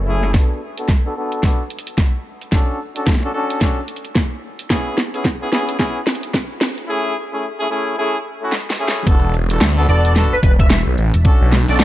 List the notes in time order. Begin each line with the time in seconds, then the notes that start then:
Already playing: F#1
0.06 A3 C#4 E4 G#4
0.23 snare
0.34 B3 D4 F#4 A4, kick, snare, closed hi-hat
0.78 B3 D4 F#4 A4, closed hi-hat
0.88 kick, snare, closed hi-hat
1.05 B3 D4 F#4 A4
1.16 B3 D4 F#4 A4
1.32 closed hi-hat
1.43 B3 D4 F#4 A4, kick, snare, closed hi-hat
1.70 closed hi-hat
1.78 closed hi-hat
1.87 closed hi-hat
1.98 kick, snare, closed hi-hat
2.41 closed hi-hat
2.52 C#4 D4 F#4 A4, kick, snare, closed hi-hat
2.96 C#4 D4 F#4 A4, closed hi-hat
3.07 kick, snare, closed hi-hat
3.09 snare
3.12 snare
3.15 snare
3.20 C#4 D4 F#4 A4, snare
3.34 C#4 D4 F#4 A4
3.50 closed hi-hat
3.61 C#4 D4 F#4 A4, kick, snare, closed hi-hat
3.88 closed hi-hat
3.96 closed hi-hat
4.05 closed hi-hat
4.15 kick, snare, closed hi-hat
4.59 closed hi-hat
4.70 B3 C#4 E4 G#4, kick, snare, closed hi-hat
4.98 snare
5.14 B3 C#4 E4 G#4, closed hi-hat
5.25 kick, snare, closed hi-hat
5.41 B3 C#4 E4 G#4
5.52 B3 C#4 E4 G#4, snare
5.69 closed hi-hat
5.79 B3 C#4 E4 G#4, kick, snare, closed hi-hat
6.07 snare, closed hi-hat
6.15 closed hi-hat
6.23 closed hi-hat
6.34 kick, snare
6.61 snare
6.78 closed hi-hat
6.88 A3 C#4 E4 G#4
7.32 A3 C#4 E4 G#4
7.59 A3 C#4 E4 G#4
7.70 A3 C#4 E4 G#4
7.97 A3 C#4 E4 G#4
8.41 A3 C#4 E4 F#4
8.52 snare
8.70 snare
8.79 A3 C#4 E4 G#4
8.88 snare
9.07 E1 B3 D4 F#4 A4, kick, closed hi-hat
9.34 closed hi-hat
9.50 B3 D4 F#4 A4, closed hi-hat
9.61 D2, snare, closed hi-hat
9.77 B3 D4 F#4 A4
9.88 E1 B3 D4 F#4 A4 D5, closed hi-hat, shaker
10.05 closed hi-hat
10.15 B3 D4 F#4 A4, snare, closed hi-hat
10.33 B4
10.43 E1 B4, kick, closed hi-hat
10.59 E5, kick, closed hi-hat
10.70 E5, snare, closed hi-hat
10.87 B1
10.98 A1, shaker
11.14 E1, closed hi-hat
11.24 C#4 D4 F#4 A4, kick, closed hi-hat
11.41 B1
11.52 snare, closed hi-hat
11.68 B1 C#4 D4 F#4 A4 D5, closed hi-hat
11.80 D5, snare, closed hi-hat